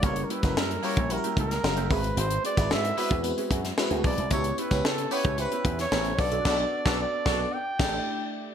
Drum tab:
CC |----------------|----------------|----------------|x---------x-----|
HH |xxxx-xoxxxxx-xox|xxxx-xoxxxxx-xox|xxxx-xoxxxxx-xox|----------------|
SD |---oo------oo---|---oo------oo---|---oo------oo---|o--o--o---o-----|
BD |o--o---o--o---o-|---o---o--o---o-|o--o---o--o---o-|o--o--o---o-----|